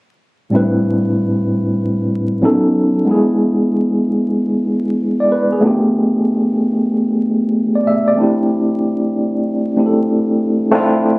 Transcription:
0.50 A2 G3 C4 D4
0.55 E4 B4
2.42 F#3 B3 C#4 D#4 A4
3.05 G#3 B3 D4
3.09 E4 G#4
5.20 D5
5.32 B4
5.52 G#4
5.61 A3 B3 D4
5.66 F4 G4
7.75 D5
7.87 E5
8.08 D5
8.16 A3 C4 D4
8.20 E4 G4
9.76 A3 C4 D4 E4 G4
9.86 A4
10.71 A3 C4 D4 E4 F4

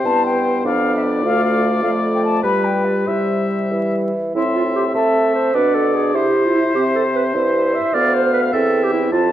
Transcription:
Already playing: C5
0.04 G2 B3 E4 A5
0.25 G5
0.64 F2 D4 D5 F5
0.96 E5
1.05 D5
1.23 D2 A3 F4 F5
1.44 F5
1.83 F2 A3 F4 F5
2.14 G5
2.24 A5
2.43 G2 G3 B4 B5
2.64 G5
2.85 D5
3.06 C3 G3 E4 C5 E5
3.71 E3
4.35 A2 C4 E4 E5 C6
4.55 F4
4.75 G4
4.95 A3 A4 E5 A5
5.35 C5
5.54 B2 D4 B4 D5 F#5
5.75 A4
5.95 G#4
6.14 C3 E4 G4 C5 E5
6.45 F4
6.55 E4
6.74 C3 C4 G4
6.95 A4
7.15 B4
7.35 G2 E4 C5 E5
7.74 E5
7.94 D2 B3 D5 F5
8.14 C5
8.33 B4
8.53 E2 C4 A4 E5 G5
8.83 G4
8.93 E4
9.12 F2 C4 F4 A5

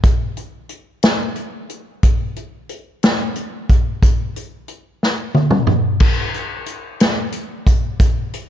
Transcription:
0.03 kick, closed hi-hat
0.37 closed hi-hat
0.69 closed hi-hat
1.03 snare, closed hi-hat
1.36 closed hi-hat
1.69 closed hi-hat
2.03 kick, closed hi-hat
2.36 closed hi-hat
2.69 closed hi-hat
3.03 snare, closed hi-hat
3.35 closed hi-hat
3.70 kick, closed hi-hat
4.03 kick, closed hi-hat
4.36 closed hi-hat
4.68 closed hi-hat
5.03 snare
5.35 high tom
5.51 mid tom
5.67 mid tom
6.00 kick, crash
6.34 closed hi-hat
6.66 closed hi-hat
7.00 snare, closed hi-hat
7.32 closed hi-hat
7.67 kick, closed hi-hat
8.00 kick, closed hi-hat
8.33 closed hi-hat

